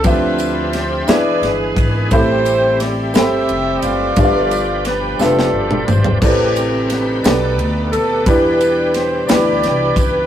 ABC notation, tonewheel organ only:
X:1
M:6/8
L:1/8
Q:3/8=59
K:Am
V:1 name="Tonewheel organ"
[F,CDGe]3 [E,^G,B,D^G]3 | [G,A,CG]6 | [B,,F,G,DG]6 | [C,A,CGB]3 [B,,A,B,Gd]3 |
[B,,E,G,DG]6 |]